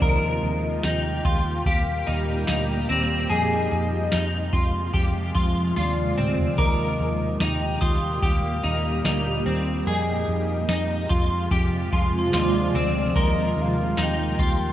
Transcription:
0.00 0.38 D#2 loud
0.00 3.26 A#2 medium
0.00 3.26 G3 medium
0.00 3.26 A#3 medium
0.00 3.26 G4 loud
0.00 0.84 A#4 medium
0.00 0.85 D#5 loud
0.00 kick loud
0.00 ride medium
0.43 0.79 D#2 loud
0.83 1.20 D#2 loud
0.83 1.25 D#4 medium
0.83 1.65 G5 loud
0.83 2.48 G6 medium
0.83 snare loud
0.83 ride medium
0.83 tambourine medium
1.25 1.61 D#2 loud
1.25 1.66 F4 medium
1.25 kick loud
1.66 2.02 D#2 medium
1.66 2.07 G4 medium
1.66 2.85 F5 loud
1.66 kick loud
1.66 ride medium
2.07 2.43 D#2 loud
2.07 2.46 D#4 medium
2.47 2.85 D2 loud
2.47 2.89 D#4 medium
2.47 snare loud
2.47 ride medium
2.47 tambourine medium
2.89 3.25 D#2 medium
2.89 3.30 C4 medium
2.89 3.68 A#6 medium
3.29 3.66 F2 loud
3.29 6.55 C3 medium
3.29 6.55 F3 medium
3.29 6.55 G#3 medium
3.29 6.55 F4 loud
3.29 4.12 G#4 medium
3.29 4.91 D#5 loud
3.29 ride medium
3.72 4.08 F2 loud
4.12 4.49 F2 loud
4.12 4.53 D#4 medium
4.12 snare loud
4.12 ride medium
4.12 tambourine medium
4.53 4.89 F2 medium
4.53 4.93 F4 medium
4.53 kick loud
4.94 5.30 F2 loud
4.94 5.34 G4 medium
4.94 kick loud
4.94 ride medium
5.35 5.71 F2 loud
5.35 5.75 F4 medium
5.35 kick loud
5.76 6.13 D#2 loud
5.76 6.17 F4 medium
5.76 6.62 D5 medium
5.76 high tom medium
5.76 ride medium
6.17 6.54 D2 medium
6.17 6.59 C4 medium
6.17 mid tom loud
6.38 floor tom loud
6.58 6.95 D#2 loud
6.58 9.84 A#2 medium
6.58 9.84 G3 medium
6.58 9.84 A#3 medium
6.58 9.84 G4 medium
6.58 7.41 A#4 medium
6.58 7.45 D#5 loud
6.58 8.23 D6 medium
6.58 kick loud
6.58 crash medium
7.00 7.36 D#2 medium
7.40 7.77 D#2 loud
7.40 7.82 D#4 medium
7.40 8.27 G5 loud
7.40 snare loud
7.40 ride medium
7.40 tambourine medium
7.81 8.18 D#2 loud
7.81 8.22 F4 medium
7.81 9.46 D#6 medium
7.81 kick loud
8.23 8.59 D#2 loud
8.23 8.64 G4 medium
8.23 9.47 F5 loud
8.23 kick loud
8.23 ride medium
8.64 9.00 D#2 loud
8.64 9.03 D#4 medium
9.05 9.41 D2 loud
9.05 9.46 D#4 medium
9.05 snare loud
9.05 ride medium
9.05 tambourine medium
9.46 9.82 D#2 medium
9.46 9.87 C4 medium
9.87 10.23 F2 loud
9.87 13.13 C3 medium
9.87 13.13 F3 medium
9.87 13.13 G#3 medium
9.87 13.13 F4 loud
9.87 10.69 G#4 medium
9.87 11.48 D#5 loud
9.87 ride medium
10.28 10.64 F2 loud
10.69 11.05 F2 loud
10.69 11.10 D#4 loud
10.69 snare loud
10.69 ride medium
10.69 tambourine medium
11.09 11.47 F2 medium
11.09 11.51 F4 medium
11.09 kick loud
11.51 11.88 F2 loud
11.51 11.92 G4 medium
11.51 kick loud
11.51 ride medium
11.92 12.29 F2 loud
11.92 12.33 F4 medium
11.92 13.53 G#5 medium
11.92 kick loud
12.19 13.15 C6 medium
12.33 12.70 D#2 loud
12.33 12.75 F4 medium
12.33 13.20 D5 loud
12.33 snare loud
12.33 ride medium
12.33 tambourine medium
12.43 13.99 D6 medium
12.75 13.11 D2 medium
12.75 13.16 C4 medium
13.15 13.52 D#2 loud
13.15 14.73 A#2 medium
13.15 14.73 G3 medium
13.15 14.73 A#3 medium
13.15 14.73 D#4 medium
13.15 13.98 A#4 medium
13.15 14.73 A#4 loud
13.15 13.63 D#5 loud
13.15 14.73 C6 medium
13.15 kick loud
13.15 ride medium
13.57 13.93 D#2 medium
13.61 14.04 F5 loud
13.97 14.34 D#2 loud
13.97 14.39 D#4 loud
13.97 snare loud
13.97 ride medium
13.97 tambourine medium
14.03 14.73 G5 loud
14.39 14.73 D#2 loud
14.39 14.73 F4 medium
14.39 kick loud

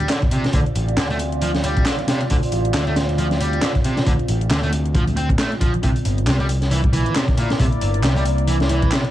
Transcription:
0.00 5.79 C4 medium
0.00 5.79 F4 medium
0.00 5.79 D5 medium
0.00 closed hi-hat soft
0.09 0.18 D3 medium
0.09 snare loud
0.09 clap loud
0.09 closed hi-hat medium
0.09 closed hi-hat soft
0.22 kick loud
0.22 closed hi-hat soft
0.31 0.44 C3 medium
0.31 closed hi-hat medium
0.44 snare medium
0.44 closed hi-hat soft
0.53 0.63 D2 medium
0.53 0.59 D3 loud
0.53 kick loud
0.53 closed hi-hat medium
0.53 closed hi-hat soft
0.66 closed hi-hat soft
0.75 0.97 A1 medium
0.75 closed hi-hat medium
0.88 closed hi-hat soft
0.97 1.82 D2 medium
0.97 1.06 D3 medium
0.97 snare loud
0.97 clap loud
0.97 closed hi-hat medium
0.97 closed hi-hat soft
1.10 1.17 A3 loud
1.10 closed hi-hat soft
1.19 closed hi-hat medium
1.32 closed hi-hat soft
1.42 1.51 F3 loud
1.42 closed hi-hat medium
1.42 closed hi-hat soft
1.54 snare soft
1.54 closed hi-hat soft
1.64 1.85 G3 medium
1.64 closed hi-hat medium
1.77 kick loud
1.77 closed hi-hat soft
1.85 1.95 D3 medium
1.85 snare loud
1.85 clap loud
1.85 closed hi-hat soft
1.85 closed hi-hat loud
1.99 closed hi-hat soft
2.08 2.20 C3 medium
2.08 snare loud
2.08 closed hi-hat medium
2.21 closed hi-hat soft
2.30 2.39 D2 loud
2.30 2.35 D3 loud
2.30 kick loud
2.30 closed hi-hat soft
2.30 closed hi-hat medium
2.43 closed hi-hat soft
2.52 2.74 A1 medium
2.52 closed hi-hat medium
2.65 closed hi-hat soft
2.74 3.58 D2 medium
2.74 2.83 D3 medium
2.74 snare loud
2.74 clap loud
2.74 closed hi-hat medium
2.74 closed hi-hat soft
2.87 2.93 A3 loud
2.87 closed hi-hat soft
2.96 snare loud
2.96 closed hi-hat medium
3.09 closed hi-hat soft
3.18 3.27 F3 loud
3.18 closed hi-hat medium
3.18 closed hi-hat soft
3.31 snare soft
3.31 closed hi-hat soft
3.40 3.62 G3 medium
3.40 closed hi-hat medium
3.53 closed hi-hat soft
3.62 3.71 D3 medium
3.62 snare loud
3.62 clap loud
3.62 closed hi-hat medium
3.62 closed hi-hat soft
3.75 kick medium
3.75 closed hi-hat soft
3.84 3.97 C3 medium
3.84 closed hi-hat medium
3.97 snare medium
3.97 closed hi-hat soft
4.06 4.16 D2 loud
4.06 4.12 D3 loud
4.06 kick loud
4.06 closed hi-hat medium
4.06 closed hi-hat soft
4.19 closed hi-hat soft
4.28 4.50 A1 medium
4.28 closed hi-hat medium
4.41 closed hi-hat soft
4.50 5.34 D2 medium
4.50 4.59 D3 medium
4.50 snare loud
4.50 clap loud
4.50 closed hi-hat medium
4.50 closed hi-hat soft
4.63 4.70 A3 loud
4.63 closed hi-hat soft
4.73 closed hi-hat medium
4.86 closed hi-hat soft
4.95 5.03 F3 loud
4.95 kick loud
4.95 closed hi-hat soft
4.95 closed hi-hat medium
5.07 closed hi-hat soft
5.16 5.28 C4 medium
5.16 closed hi-hat medium
5.29 kick loud
5.29 closed hi-hat soft
5.38 5.51 A3 medium
5.38 snare loud
5.38 clap loud
5.38 closed hi-hat medium
5.38 closed hi-hat soft
5.52 closed hi-hat soft
5.60 5.72 F3 loud
5.60 kick loud
5.60 closed hi-hat medium
5.74 closed hi-hat soft
5.83 5.92 C2 loud
5.83 5.88 C3 loud
5.83 9.11 A#3 medium
5.83 9.11 E4 medium
5.83 9.11 D5 medium
5.83 kick loud
5.83 closed hi-hat medium
5.83 closed hi-hat soft
5.96 closed hi-hat soft
6.05 6.27 G1 medium
6.05 closed hi-hat medium
6.18 closed hi-hat soft
6.27 7.11 C2 medium
6.27 6.36 C3 medium
6.27 snare loud
6.27 clap loud
6.27 closed hi-hat soft
6.27 closed hi-hat medium
6.40 6.46 G3 loud
6.40 closed hi-hat soft
6.49 closed hi-hat medium
6.62 snare soft
6.62 closed hi-hat soft
6.71 6.80 E3 loud
6.71 closed hi-hat soft
6.71 closed hi-hat medium
6.84 kick loud
6.84 closed hi-hat soft
6.93 7.14 E3 medium
6.93 closed hi-hat medium
7.06 closed hi-hat soft
7.15 7.24 C3 medium
7.15 snare loud
7.15 clap loud
7.15 closed hi-hat soft
7.15 closed hi-hat medium
7.28 kick loud
7.28 closed hi-hat soft
7.37 7.50 A#2 medium
7.37 closed hi-hat medium
7.50 snare medium
7.50 closed hi-hat soft
7.59 7.69 C2 loud
7.59 7.65 C3 loud
7.59 kick loud
7.59 closed hi-hat soft
7.59 closed hi-hat medium
7.72 closed hi-hat soft
7.81 8.03 G1 medium
7.81 closed hi-hat medium
7.94 closed hi-hat soft
8.03 8.87 C2 medium
8.03 8.12 C3 medium
8.03 snare loud
8.03 clap loud
8.03 closed hi-hat soft
8.03 closed hi-hat medium
8.16 8.23 G3 loud
8.16 closed hi-hat soft
8.25 closed hi-hat medium
8.38 closed hi-hat soft
8.48 8.56 E3 loud
8.48 closed hi-hat soft
8.48 closed hi-hat medium
8.60 snare medium
8.60 closed hi-hat soft
8.69 8.91 E3 medium
8.69 closed hi-hat medium
8.82 kick loud
8.82 closed hi-hat soft
8.91 9.00 C3 medium
8.91 snare loud
8.91 clap loud
8.91 closed hi-hat medium
8.91 closed hi-hat soft
9.05 closed hi-hat soft

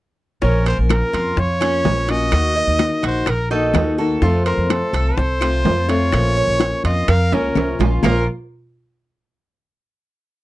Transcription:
0.41 0.76 A#1 medium
0.41 1.36 F3 medium
0.41 1.38 A#3 medium
0.41 0.65 C#4 medium
0.41 1.37 C#4 medium
0.41 1.38 F4 medium
0.41 0.65 A#4 medium
0.41 high bongo medium
0.66 1.12 A#4 medium
0.66 0.78 C5 medium
0.66 high timbale medium
0.78 1.01 A#1 medium
0.89 1.41 A#4 medium
0.89 high bongo medium
0.89 high timbale medium
0.89 low timbale medium
0.89 claves medium
1.13 1.36 F2 medium
1.13 1.59 F4 medium
1.13 high bongo soft
1.13 high timbale medium
1.37 1.82 F2 medium
1.37 2.12 C#5 loud
1.37 muted steel-string acoustic guitar stroke medium
1.37 high bongo medium
1.61 1.84 A#3 soft
1.61 2.07 C#4 medium
1.61 1.85 C#4 medium
1.61 1.84 F4 medium
1.61 high bongo soft
1.61 high timbale medium
1.61 claves medium
1.84 2.30 A#1 medium
1.84 2.07 F3 soft
1.84 2.08 A#3 soft
1.84 2.08 C#4 medium
1.84 2.07 F4 medium
1.84 high bongo soft
1.84 low bongo medium
1.84 low timbale medium
2.08 2.32 A#3 medium
2.08 2.32 C#4 medium
2.08 2.31 F4 medium
2.08 2.54 F#4 medium
2.08 3.04 D#5 loud
2.08 high bongo soft
2.08 high timbale medium
2.32 2.66 D#2 medium
2.32 3.26 D#3 medium
2.32 3.26 A#3 medium
2.32 3.27 D#4 medium
2.32 3.27 F#4 medium
2.32 high bongo medium
2.32 high timbale medium
2.32 claves medium
2.56 3.02 D#5 medium
2.67 2.90 D#2 medium
2.79 high bongo medium
2.79 high timbale medium
2.79 low timbale medium
3.02 3.26 A#1 medium
3.02 3.26 F#4 medium
3.02 high bongo soft
3.02 high timbale medium
3.06 3.31 C5 medium
3.26 3.72 A#1 medium
3.26 3.50 A#4 medium
3.26 3.51 A#4 medium
3.26 muted steel-string acoustic guitar stroke medium
3.26 high bongo medium
3.26 high timbale medium
3.26 claves medium
3.50 3.74 A#3 medium
3.50 3.97 D#4 medium
3.50 3.74 D#4 medium
3.50 3.74 F#4 medium
3.50 3.96 A4 medium
3.50 high bongo soft
3.74 4.20 D#2 medium
3.74 3.97 D#3 soft
3.74 3.98 A#3 medium
3.74 3.98 D#4 medium
3.74 3.97 F#4 medium
3.74 high bongo soft
3.74 low bongo medium
3.74 high timbale medium
3.74 low timbale medium
3.74 claves medium
3.98 4.22 A#3 medium
3.98 4.22 D#4 medium
3.98 4.21 F#4 medium
3.98 4.22 A4 medium
3.98 high bongo soft
4.21 4.56 F2 medium
4.21 5.16 C3 medium
4.21 5.18 F3 medium
4.21 5.17 A3 medium
4.21 5.18 C4 medium
4.21 4.45 F4 medium
4.21 5.19 F4 medium
4.21 4.44 A4 medium
4.21 high bongo medium
4.46 4.72 A#4 medium
4.46 4.92 C5 medium
4.46 high timbale medium
4.57 4.80 F2 medium
4.70 5.18 A4 medium
4.70 high bongo medium
4.70 high timbale medium
4.70 low timbale medium
4.70 claves medium
4.93 5.16 C2 medium
4.93 5.40 A4 medium
4.93 high bongo soft
4.93 high timbale medium
5.16 5.63 C2 medium
5.16 5.90 C5 medium
5.16 muted steel-string acoustic guitar stroke medium
5.16 high bongo medium
5.41 5.64 F3 medium
5.41 5.65 A3 medium
5.41 5.65 C4 medium
5.41 5.64 F4 medium
5.41 5.87 F4 medium
5.41 high bongo soft
5.41 high timbale medium
5.41 claves medium
5.65 6.11 F2 medium
5.65 5.88 F3 soft
5.65 5.89 A3 soft
5.65 5.88 C4 soft
5.65 5.87 F4 medium
5.65 high bongo soft
5.65 low bongo medium
5.65 low timbale medium
5.89 6.11 F3 soft
5.89 6.12 A3 medium
5.89 6.12 C4 medium
5.89 6.35 F4 medium
5.89 6.12 F4 medium
5.89 6.84 C#5 loud
5.89 high bongo soft
5.89 high timbale medium
6.12 6.47 A#1 medium
6.12 7.07 F3 medium
6.12 7.07 A#3 medium
6.12 7.08 C#4 medium
6.12 7.08 F4 medium
6.12 high bongo medium
6.12 high timbale medium
6.12 claves medium
6.37 6.83 C#5 medium
6.47 6.71 A#1 medium
6.60 high bongo medium
6.60 high timbale medium
6.60 low timbale medium
6.84 7.07 F2 medium
6.84 7.08 F4 medium
6.84 7.10 D#5 medium
6.84 high bongo soft
6.84 high timbale medium
7.08 7.31 F2 medium
7.08 7.32 A#4 medium
7.08 7.35 F5 loud
7.08 muted steel-string acoustic guitar stroke medium
7.08 high bongo medium
7.08 high timbale medium
7.08 claves medium
7.32 7.54 C#2 medium
7.32 7.55 A#3 soft
7.32 7.56 C#4 medium
7.32 7.79 C#4 medium
7.32 7.55 F4 medium
7.32 7.81 A#4 medium
7.32 high bongo soft
7.32 high timbale medium
7.55 7.77 C2 medium
7.55 7.79 F3 soft
7.55 7.79 A#3 soft
7.55 7.79 C#4 medium
7.55 7.78 F4 medium
7.55 high bongo soft
7.55 low bongo medium
7.55 high timbale medium
7.55 claves medium
7.79 8.01 A#1 medium
7.79 8.03 A#3 medium
7.79 8.03 C#4 medium
7.79 8.03 F4 medium
7.79 8.02 F4 medium
7.79 high bongo soft
7.79 low timbale medium
8.03 8.26 A#1 medium
8.03 8.23 A#2 medium
8.03 8.23 F3 medium
8.03 8.26 A#3 medium
8.03 8.23 A#3 medium
8.03 8.24 C#4 medium
8.03 8.26 F4 medium
8.03 8.24 F4 medium
8.03 8.26 A#4 medium
8.03 low bongo medium
8.03 low timbale medium
8.03 claves medium

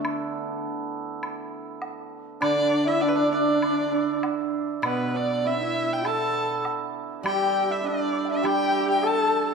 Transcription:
0.00 0.64 D3 medium
0.00 3.87 A3 medium
0.00 3.41 B3 medium
0.00 2.40 D4 medium
0.00 2.04 E4 medium
0.05 high woodblock medium
1.23 high woodblock medium
1.82 low woodblock soft
2.41 4.22 D3 medium
2.41 3.00 D4 medium
2.41 2.88 D4 medium
2.41 2.89 D5 medium
2.41 2.87 D5 medium
2.41 high woodblock medium
2.85 3.04 E4 medium
2.85 3.88 E4 medium
2.85 3.04 E5 medium
2.85 3.03 E5 medium
3.00 3.15 D4 medium
3.00 3.10 D5 medium
3.00 3.32 D5 medium
3.00 low woodblock soft
3.08 3.17 B4 medium
3.16 3.30 D4 medium
3.16 3.32 D4 medium
3.16 3.30 D5 medium
3.31 3.40 D4 medium
3.31 4.19 D4 medium
3.31 4.18 D5 medium
3.31 4.19 D5 medium
3.40 3.47 D4 medium
3.48 3.55 D4 medium
3.55 3.63 D4 medium
3.62 3.69 D4 medium
3.62 high woodblock medium
3.70 3.79 D4 medium
3.80 3.92 D4 medium
3.88 5.14 D4 medium
3.88 5.44 E4 soft
4.23 high woodblock soft
4.23 low woodblock soft
4.82 6.64 B2 medium
4.82 5.47 B3 medium
4.82 8.98 B3 medium
4.82 5.18 B4 medium
4.82 5.16 B4 medium
4.82 high woodblock medium
5.15 7.83 D4 medium
5.15 5.48 D5 medium
5.44 7.70 E4 medium
5.44 6.07 E4 medium
5.44 6.06 E5 medium
5.44 5.95 E5 medium
5.93 6.08 G5 medium
6.05 6.65 A4 medium
6.05 9.00 A4 medium
6.05 6.65 A5 medium
6.05 high woodblock medium
6.65 low woodblock soft
7.23 8.42 G3 medium
7.23 7.80 G4 medium
7.23 8.42 G4 medium
7.23 7.72 G5 medium
7.23 7.73 G5 medium
7.23 high woodblock medium
7.70 9.54 E4 medium
7.70 7.86 E5 medium
7.70 7.88 E5 medium
7.84 9.54 D4 medium
7.84 8.46 D4 medium
7.84 8.27 D5 medium
7.84 8.30 D5 medium
8.25 8.44 E5 medium
8.25 8.30 G5 soft
8.32 8.48 E5 medium
8.42 9.54 G3 medium
8.42 9.54 G4 medium
8.42 9.05 G4 medium
8.42 8.87 G5 medium
8.42 8.90 G5 loud
8.42 high woodblock medium
8.87 9.02 G5 medium
8.87 9.08 G5 medium
9.03 9.47 A4 medium
9.03 9.54 A4 medium
9.03 9.45 A5 medium
9.03 9.49 A5 loud
9.03 low woodblock soft

